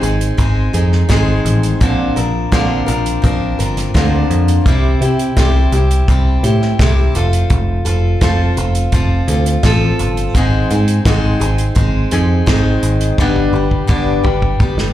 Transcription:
0.01 picked electric bass G#1, steel-string acoustic guitar G#3 C4 D#4 G#4, closed hi-hat
0.21 closed hi-hat
0.37 picked electric bass G#1, steel-string acoustic guitar G#3 C4 D#4 G#4, kick, closed hi-hat
0.73 picked electric bass F2, steel-string acoustic guitar G#3 C4 D#4 G#4, closed hi-hat
0.92 snare
1.09 picked electric bass G#1, steel-string acoustic guitar G#2 D#3 G#3 C4 D#4 G#4, kick, snare, closed hi-hat
1.45 picked electric bass A1, closed hi-hat
1.63 closed hi-hat
1.81 picked electric bass A#1, steel-string acoustic guitar A#2 D3 F3 C4 D4 A#4, kick, closed hi-hat
2.16 picked electric bass A#1, steel-string acoustic guitar F3 C4 D4 A#4, closed hi-hat
2.52 picked electric bass A#1, steel-string acoustic guitar A#2 D3 F3 C4 D4 A#4, kick, snare, closed hi-hat
2.86 picked electric bass A#1, steel-string acoustic guitar F3 C4 D4 A#4, closed hi-hat
3.06 closed hi-hat
3.22 picked electric bass A#1, steel-string acoustic guitar F3 C4 D4 A#4, kick, closed hi-hat
3.59 picked electric bass G1, steel-string acoustic guitar F3 C4 D4 A#4, closed hi-hat
3.77 snare, closed hi-hat
3.94 picked electric bass D2, steel-string acoustic guitar A#2 D3 F3 C4 D4 A#4, kick, snare, closed hi-hat
4.30 picked electric bass F2, closed hi-hat
4.48 closed hi-hat
4.66 picked electric bass C2, steel-string acoustic guitar C3 G3 C4 E4 G4, kick, closed hi-hat
5.01 picked electric bass C3, steel-string acoustic guitar E4 G4, closed hi-hat
5.05 steel-string acoustic guitar C4
5.19 closed hi-hat
5.37 picked electric bass C2, steel-string acoustic guitar C3 G3 C4 E4 G4, kick, snare, closed hi-hat
5.72 picked electric bass C2, steel-string acoustic guitar E4 G4, closed hi-hat
5.77 steel-string acoustic guitar C4
5.91 closed hi-hat
6.08 picked electric bass C2, steel-string acoustic guitar G3 C4 E4 G4, kick, closed hi-hat
6.43 picked electric bass A2, steel-string acoustic guitar E4 G4, closed hi-hat
6.48 steel-string acoustic guitar C4
6.62 snare
6.79 picked electric bass C2, steel-string acoustic guitar C3 G3 C4 E4 G4, kick, snare, closed hi-hat
7.15 picked electric bass F1, steel-string acoustic guitar F3 C4 F4 A4, closed hi-hat
7.33 closed hi-hat
7.50 picked electric bass F1, kick, closed hi-hat
7.85 picked electric bass F1, steel-string acoustic guitar C4 F4 A4, closed hi-hat
8.21 picked electric bass F1, steel-string acoustic guitar F3 C4 F4 A4, kick, snare, closed hi-hat
8.57 picked electric bass F1, steel-string acoustic guitar C4 F4 A4, closed hi-hat
8.75 closed hi-hat
8.92 picked electric bass F1, steel-string acoustic guitar F3 C4 F4 A4, kick, closed hi-hat
9.28 picked electric bass D2, steel-string acoustic guitar F4 A4, closed hi-hat
9.33 steel-string acoustic guitar C4
9.46 closed hi-hat
9.63 picked electric bass A1, steel-string acoustic guitar F3 C4 F4 A4, kick, snare, closed hi-hat
9.99 picked electric bass G1, closed hi-hat
10.17 closed hi-hat
10.34 picked electric bass G#1, steel-string acoustic guitar G#2 D#3 G#3 C4 D#4 G#4, kick, closed hi-hat
10.71 picked electric bass G#2, steel-string acoustic guitar G#3 C4 D#4 G#4, closed hi-hat
10.88 closed hi-hat
11.05 picked electric bass G#1, steel-string acoustic guitar G#2 D#3 G#3 C4 D#4 G#4, kick, snare, closed hi-hat
11.40 picked electric bass G#1, steel-string acoustic guitar G#3 C4 D#4 G#4, closed hi-hat
11.58 closed hi-hat
11.75 picked electric bass G#1, steel-string acoustic guitar G#3 C4 D#4 G#4, kick, closed hi-hat
12.11 picked electric bass F2, steel-string acoustic guitar G#3 C4 D#4 G#4, closed hi-hat
12.46 picked electric bass G#1, steel-string acoustic guitar G#2 D#3 G#3 C4 D#4 G#4, kick, snare, closed hi-hat
12.83 picked electric bass G#1, closed hi-hat
13.01 closed hi-hat
13.18 picked electric bass G1, steel-string acoustic guitar G2 D3 G3 B3 D4 G4, kick
13.36 kick
13.53 picked electric bass G1, steel-string acoustic guitar G3 B3 D4 G4
13.71 kick
13.87 picked electric bass G1, steel-string acoustic guitar G2 D3 G3 B3 D4 G4, kick
14.23 picked electric bass G1, steel-string acoustic guitar G3 B3 D4 G4, kick
14.42 kick
14.60 picked electric bass G1, steel-string acoustic guitar G3 B3 D4 G4, kick
14.78 snare

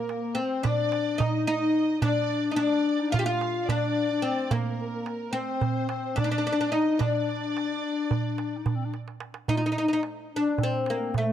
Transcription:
Already playing: oud A#3, clarinet A#3, violin section A#4
0.09 darbuka tek
0.35 oud C4, violin section C5, darbuka ka
0.40 clarinet C4
0.63 oud D4, clarinet D4, violin section D5, darbuka dum
0.92 darbuka tek
1.18 oud D#4, clarinet D#4, violin section D#5, darbuka dum
1.47 oud D#4, clarinet D#4, violin section D#5
1.98 oud D4, clarinet D#4, darbuka dum
2.03 clarinet D4, violin section D5
2.30 darbuka ka
2.51 oud D#4
2.56 oud D4, clarinet D4, violin section D5, darbuka tek
2.86 darbuka ka
3.00 clarinet D#4
3.12 oud F4, clarinet F4, violin section F5, darbuka dum
3.19 oud G4
3.26 oud F4, clarinet F4, violin section F5
3.41 darbuka tek
3.68 oud D4, clarinet D4, violin section D5, darbuka dum
4.11 clarinet D4
4.22 oud C4, clarinet C4
4.47 clarinet C4
4.51 oud A#3, clarinet A#3, violin section A#4, darbuka dum
4.80 darbuka ka
5.06 darbuka tek
5.33 oud C4, clarinet C4, violin section C5, darbuka ka
5.61 darbuka dum
5.89 clarinet C4, darbuka tek
6.16 oud D4, clarinet D4, violin section D5, darbuka dum
6.24 oud D4, clarinet D#4
6.30 clarinet D4, oud D4
6.38 oud D4
6.47 oud D4
6.53 oud D4
6.61 oud D4
6.72 oud D#4, clarinet D#4, violin section D#5
6.99 oud D4, clarinet D4, violin section D5, darbuka dum
7.29 darbuka ka
7.57 darbuka tek
7.83 darbuka ka
8.11 darbuka dum
8.38 darbuka tek
8.57 clarinet D#4
8.66 clarinet D4, darbuka dum
8.76 clarinet C4
8.85 clarinet D4
8.94 darbuka tek
9.08 darbuka ka
9.20 darbuka tek
9.34 darbuka ka
9.48 oud D#4, clarinet D#4, darbuka dum
9.55 oud D#4, clarinet F4
9.63 clarinet D#4, oud D#4
9.72 oud D#4
9.78 oud D#4
9.88 oud D#4, clarinet D#4
9.93 oud D#4
10.03 darbuka tek
10.34 clarinet D4, oud D4
10.58 clarinet C4, darbuka dum
10.63 oud C4
10.86 oud A#3, darbuka tek
11.14 clarinet A3, oud A3, darbuka dum

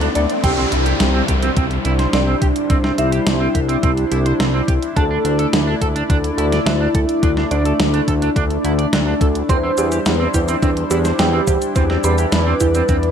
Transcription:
Already playing: analog synth pad A3 D4 E4 D5, riser
0.01 clean electric guitar D4, closed hi-hat
0.15 analog synth bass D2, clean electric guitar A4, synth arpeggio sound D5, closed hi-hat
0.30 closed hi-hat
0.43 analog synth bass C2, analog synth pad G3 D4 E4 C5, clean electric guitar C4, soft synth lead G4, synth bell G5, kick, closed hi-hat, crash, downlifter
0.58 clean electric guitar C4
0.72 analog synth bass C2, clean electric guitar C4, closed hi-hat
0.86 clean electric guitar G4, closed hi-hat
1.00 analog synth bass C2, snare, closed hi-hat
1.14 clean electric guitar C4
1.28 analog synth bass C2, clean electric guitar G4, kick, closed hi-hat
1.43 clean electric guitar C4, closed hi-hat
1.57 analog synth bass C2, clean electric guitar C4, kick, closed hi-hat
1.71 closed hi-hat
1.85 analog synth bass C2, clean electric guitar E4, closed hi-hat
1.99 clean electric guitar C5, snare, closed hi-hat
2.13 analog synth bass C2, clean electric guitar C4, soft synth lead D4, synth bell D5, snare, closed hi-hat
2.27 clean electric guitar C4
2.41 analog synth bass C2, clean electric guitar G4, kick, closed hi-hat
2.56 closed hi-hat
2.70 analog synth bass C2, clean electric guitar C4, kick, closed hi-hat
2.84 clean electric guitar C4, snare
2.98 analog synth bass C2, clean electric guitar C4, soft synth lead E4, synth bell E5, closed hi-hat
3.12 clean electric guitar G4, closed hi-hat
3.27 analog synth bass C2, snare, closed hi-hat
3.40 clean electric guitar C4
3.54 analog synth bass C2, clean electric guitar G4, kick, closed hi-hat
3.69 clean electric guitar C4, closed hi-hat
3.83 analog synth bass C2, clean electric guitar C4, kick, closed hi-hat
3.97 closed hi-hat
4.11 analog synth bass C2, clean electric guitar E4, closed hi-hat
4.26 clean electric guitar C5, closed hi-hat
4.40 analog synth bass C2, clean electric guitar C4, snare, closed hi-hat
4.54 clean electric guitar C4
4.68 analog synth bass C2, clean electric guitar G4, kick, closed hi-hat
4.82 closed hi-hat
4.96 analog synth bass D2, analog synth pad A3 D5, clean electric guitar D4, soft synth lead A4, synth bell A5, kick, closed hi-hat
5.11 clean electric guitar D4
5.25 analog synth bass D2, clean electric guitar D4, closed hi-hat
5.39 clean electric guitar A4, closed hi-hat
5.53 analog synth bass D2, snare, closed hi-hat
5.67 clean electric guitar D4
5.81 analog synth bass D2, clean electric guitar A4, kick, closed hi-hat
5.96 clean electric guitar D4, closed hi-hat
6.10 analog synth bass D2, clean electric guitar D4, kick, closed hi-hat
6.24 closed hi-hat
6.38 analog synth bass D2, clean electric guitar E4, closed hi-hat
6.52 clean electric guitar D5, snare, closed hi-hat
6.66 analog synth bass D2, clean electric guitar D4, soft synth lead E4, synth bell E5, snare, closed hi-hat
6.81 clean electric guitar D4
6.95 analog synth bass D2, clean electric guitar A4, kick, closed hi-hat
7.09 closed hi-hat
7.23 analog synth bass D2, clean electric guitar D4, kick, closed hi-hat
7.37 clean electric guitar D4, snare
7.51 analog synth bass D2, clean electric guitar D4, soft synth lead D4, synth bell D5, closed hi-hat
7.65 clean electric guitar A4, closed hi-hat
7.79 analog synth bass D2, snare, closed hi-hat
7.94 clean electric guitar D4, closed hi-hat
8.08 analog synth bass D2, clean electric guitar A4, kick, closed hi-hat
8.22 clean electric guitar D4, closed hi-hat
8.36 analog synth bass D2, clean electric guitar D4, kick, closed hi-hat
8.50 closed hi-hat
8.64 analog synth bass D2, clean electric guitar E4, closed hi-hat
8.78 clean electric guitar D5, closed hi-hat
8.93 analog synth bass D2, clean electric guitar D4, snare, closed hi-hat
9.07 clean electric guitar D4
9.21 analog synth bass D2, clean electric guitar A4, kick, closed hi-hat
9.35 closed hi-hat
9.49 analog synth bass E2, analog synth pad G3 D4 E4 C5, clean electric guitar C4, synth arpeggio sound C5, soft synth lead C5, synth bell C6, kick, closed hi-hat, shaker
9.63 clean electric guitar C4
9.77 analog synth bass E2, clean electric guitar C4, synth arpeggio sound G4, closed hi-hat, shaker
9.92 clean electric guitar G4, closed hi-hat, shaker
10.06 analog synth bass E2, snare, closed hi-hat, shaker
10.20 clean electric guitar C4
10.34 analog synth bass E2, synth arpeggio sound E4, clean electric guitar G4, kick, closed hi-hat, shaker
10.48 clean electric guitar C4, closed hi-hat, shaker
10.62 analog synth bass E2, clean electric guitar C4, synth arpeggio sound D4, kick, closed hi-hat, shaker
10.77 closed hi-hat
10.91 analog synth bass E2, clean electric guitar E4, synth arpeggio sound G4, closed hi-hat, shaker
11.05 clean electric guitar C5, snare, closed hi-hat, shaker
11.19 analog synth bass E2, clean electric guitar C4, soft synth lead G4, synth bell G5, snare, closed hi-hat, shaker
11.33 clean electric guitar C4
11.47 analog synth bass E2, clean electric guitar G4, synth arpeggio sound C5, kick, closed hi-hat, shaker
11.62 closed hi-hat, shaker
11.75 analog synth bass E2, clean electric guitar C4, synth arpeggio sound C5, analog synth pad D5, kick, closed hi-hat, shaker
11.90 clean electric guitar C4, snare
12.04 analog synth bass E2, clean electric guitar C4, synth arpeggio sound G4, soft synth lead B4, synth bell B5, closed hi-hat, shaker
12.18 clean electric guitar G4, closed hi-hat, shaker
12.32 analog synth bass E2, snare, closed hi-hat, shaker
12.47 clean electric guitar C4
12.61 analog synth bass E2, synth arpeggio sound E4, clean electric guitar G4, kick, closed hi-hat, shaker
12.75 clean electric guitar C4, closed hi-hat, shaker
12.89 analog synth bass E2, clean electric guitar C4, synth arpeggio sound D4, kick, closed hi-hat, shaker
13.03 closed hi-hat

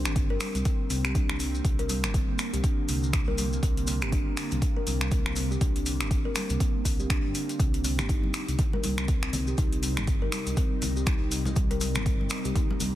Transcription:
Already playing: ambient pad D3 A#3 C4
0.05 detuned saw bass G1, finger snap, maracas
0.16 kick, closed hi-hat, maracas
0.30 kalimba A#4
0.40 kalimba G3, finger snap, open hi-hat, maracas
0.55 detuned saw bass C2, closed hi-hat, maracas
0.65 kalimba C4, kick, closed hi-hat, maracas
0.90 detuned saw bass C2, kalimba C4, open hi-hat, maracas
1.05 kalimba G4, finger snap, maracas
1.15 kalimba D4, kick, closed hi-hat, maracas
1.30 detuned saw bass C2, finger snap
1.40 open hi-hat, maracas
1.55 maracas
1.65 detuned saw bass C2, kick, closed hi-hat, maracas
1.79 kalimba A#4, closed hi-hat
1.89 kalimba G3, open hi-hat, maracas
2.04 detuned saw bass G1, finger snap, maracas
2.14 kalimba C4, kick, closed hi-hat, maracas
2.39 kalimba C4, finger snap, open hi-hat, maracas
2.53 detuned saw bass C2, kalimba G4, closed hi-hat, maracas
2.64 kalimba D4, kick, closed hi-hat, maracas
2.89 detuned saw bass C2, open hi-hat, maracas
3.03 maracas
3.13 finger snap, kick, closed hi-hat, maracas
3.28 detuned saw bass C2, kalimba A#4
3.38 kalimba G3, open hi-hat, maracas
3.53 maracas
3.63 detuned saw bass C2, kalimba C4, kick, closed hi-hat, maracas
3.77 closed hi-hat
3.87 kalimba C4, open hi-hat, maracas
4.02 detuned saw bass G1, kalimba G4, finger snap, maracas
4.12 kalimba D4, kick, closed hi-hat, maracas
4.37 finger snap, open hi-hat, maracas
4.51 detuned saw bass C2, closed hi-hat, maracas
4.62 kick, closed hi-hat, maracas
4.76 kalimba A#4
4.87 detuned saw bass C2, kalimba G3, open hi-hat, maracas
5.01 finger snap, maracas
5.11 kalimba C4, kick, closed hi-hat, maracas
5.26 detuned saw bass C2, finger snap
5.36 kalimba C4, open hi-hat, maracas
5.51 kalimba G4, maracas
5.61 detuned saw bass C2, kalimba D4, kick, closed hi-hat, maracas
5.76 closed hi-hat
5.86 open hi-hat, maracas
6.01 detuned saw bass G1, finger snap, closed hi-hat, maracas
6.11 kick, closed hi-hat, maracas
6.25 kalimba A#4
6.35 kalimba G3, finger snap, open hi-hat, maracas
6.50 detuned saw bass C2, closed hi-hat, maracas
6.60 kalimba C4, kick, closed hi-hat, maracas
6.85 detuned saw bass C2, kalimba C4, kick, open hi-hat, maracas
7.00 kalimba G4, maracas
7.10 kalimba D4, finger snap, kick, closed hi-hat, maracas
7.25 detuned saw bass G1
7.35 open hi-hat, maracas
7.49 closed hi-hat, maracas
7.59 detuned saw bass C2, ambient pad C3 G3 C4 D#4, kalimba C4, kick, closed hi-hat, maracas
7.74 closed hi-hat
7.84 kalimba C4, open hi-hat, maracas
7.98 detuned saw bass G1, kalimba G4, finger snap, high conga, low conga, maracas
8.09 kalimba D#4, kick, closed hi-hat, maracas
8.24 high conga
8.34 finger snap, open hi-hat, maracas
8.48 detuned saw bass C2, closed hi-hat, maracas
8.59 kick, closed hi-hat, low conga, maracas
8.73 kalimba A#4, high conga
8.84 detuned saw bass C2, kalimba G3, open hi-hat, high conga, low conga, maracas
8.98 finger snap, maracas
9.08 kalimba C4, kick, closed hi-hat, maracas
9.23 detuned saw bass C2, finger snap
9.33 kalimba C4, open hi-hat, low conga, maracas
9.47 kalimba G4, maracas
9.58 detuned saw bass C2, kalimba D#4, kick, closed hi-hat, maracas
9.72 closed hi-hat
9.83 open hi-hat, maracas
9.97 detuned saw bass G1, finger snap, high conga, low conga, maracas
10.07 kick, closed hi-hat, maracas
10.22 kalimba A#4
10.32 kalimba G3, finger snap, open hi-hat, maracas
10.47 detuned saw bass C2, closed hi-hat, maracas
10.57 kalimba C4, kick, closed hi-hat, high conga, maracas
10.82 detuned saw bass C2, kalimba C4, open hi-hat, high conga, low conga, maracas
10.96 kalimba G4, maracas
11.06 kalimba D#4, finger snap, kick, closed hi-hat, high conga, maracas
11.21 detuned saw bass C2
11.32 open hi-hat, maracas
11.45 high conga, maracas
11.56 detuned saw bass C2, ambient pad A#3, kick, closed hi-hat, maracas
11.71 kalimba A#4, closed hi-hat
11.81 kalimba G3, open hi-hat, maracas
11.95 detuned saw bass G1, finger snap, high conga, low conga, maracas
12.06 kalimba C4, kick, closed hi-hat, maracas
12.21 high conga
12.30 kalimba C4, finger snap, open hi-hat, maracas
12.45 detuned saw bass C2, kalimba G4, closed hi-hat, maracas
12.55 kalimba D#4, kick, closed hi-hat, low conga, maracas
12.70 high conga
12.80 detuned saw bass C2, open hi-hat, high conga, low conga, maracas

